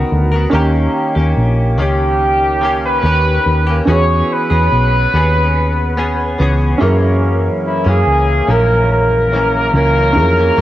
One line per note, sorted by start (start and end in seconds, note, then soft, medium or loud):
0.00 0.32 D#3 medium
0.00 0.33 B3 medium
0.00 0.33 F#4 medium
0.00 0.30 A#4 medium
0.12 0.45 D2 medium
0.32 0.53 F#4 soft
0.32 0.53 A#4 soft
0.36 0.53 B3 soft
0.50 0.87 D#2 medium
0.50 1.15 D#3 medium
0.50 1.16 A#3 medium
0.50 3.82 C#4 medium
0.50 1.16 C#4 medium
0.50 3.83 D#4 medium
0.50 3.84 G4 medium
0.54 1.14 G4 medium
0.54 3.85 A#5 medium
1.15 1.33 D#2 medium
1.15 1.78 A#3 soft
1.15 1.79 C#4 soft
1.15 1.78 G4 soft
1.37 1.79 A#1 medium
1.78 3.00 C#2 medium
1.78 2.60 D#3 medium
1.78 2.62 A#3 medium
1.78 2.64 C#4 medium
1.78 2.80 G4 medium
1.78 2.64 G4 medium
2.61 3.01 D#3 medium
2.61 3.05 A#3 medium
2.61 3.04 C#4 medium
2.61 3.05 G4 medium
2.86 3.85 B4 loud
3.03 3.37 D#2 medium
3.03 3.66 D#3 soft
3.03 3.68 C#4 medium
3.03 3.66 G4 medium
3.46 3.80 D#2 medium
3.67 3.88 A#3 soft
3.67 3.87 C#4 soft
3.67 3.88 G4 medium
3.85 4.21 E2 medium
3.85 4.50 E3 medium
3.85 4.51 B3 medium
3.85 6.76 C#4 medium
3.85 4.51 C#4 medium
3.85 6.77 F#4 medium
3.85 6.77 G#4 medium
3.90 4.49 G#4 medium
3.90 6.78 B4 medium
3.90 4.35 C#5 medium
4.33 6.83 B4 loud
4.50 4.68 E2 medium
4.50 5.13 B3 soft
4.50 5.14 C#4 soft
4.50 5.13 G#4 soft
4.72 5.05 B1 medium
5.14 6.35 D#2 medium
5.14 5.96 B3 medium
5.14 5.98 C#4 medium
5.14 5.98 G#4 medium
5.97 6.38 B3 medium
5.97 6.40 C#4 medium
5.97 6.40 G#4 medium
6.38 6.73 C#2 medium
6.38 6.79 E3 medium
6.38 6.81 B3 medium
6.38 6.81 C#4 medium
6.38 6.83 G#4 medium
6.78 7.85 F#2 medium
6.78 7.48 F#2 medium
6.78 7.85 E3 medium
6.78 7.86 A#3 medium
6.78 10.10 C#4 medium
6.78 10.11 E4 medium
6.78 10.12 G#4 medium
6.82 7.84 C#4 medium
6.82 10.13 A#4 medium
7.67 7.90 E4 medium
7.84 8.03 F#2 medium
7.84 8.48 E3 soft
7.84 8.49 A#3 soft
7.84 8.48 C#4 soft
7.88 8.52 G#4 loud
8.07 8.40 C#2 medium
8.47 9.70 A#1 medium
8.47 9.31 F#2 medium
8.47 9.32 E3 soft
8.47 9.34 A#3 medium
8.47 9.36 C#4 medium
8.47 8.91 A#4 medium
8.92 10.61 A#4 loud
9.32 9.73 F#2 medium
9.32 9.74 E3 medium
9.32 9.75 A#3 medium
9.32 9.76 C#4 medium
9.74 10.18 C#2 medium
9.74 10.37 F#2 medium
9.74 10.37 E3 medium
9.74 10.38 A#3 medium
9.74 10.36 C#4 medium
10.13 10.50 F2 medium
10.13 10.61 C#4 medium
10.13 10.61 E4 medium
10.13 10.61 G#4 medium
10.18 10.61 A#4 medium
10.37 10.56 E3 soft
10.37 10.57 A#3 soft
10.37 10.58 C#4 medium
10.57 10.61 F#2 medium
10.57 10.61 E3 medium